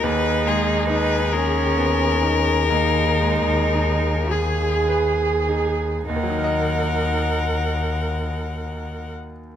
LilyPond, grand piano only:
\new Staff \with { instrumentName = "Grand piano" } { \time 6/8 \key ees \minor \tempo 4. = 35 ees,8 aes8 ees'8 aes'8 ces'8 ees'8 | ees,8 aes8 ees'8 aes'8 ces''8 ees'8 | <ees, ees ges ees' bes' ees''>2. | }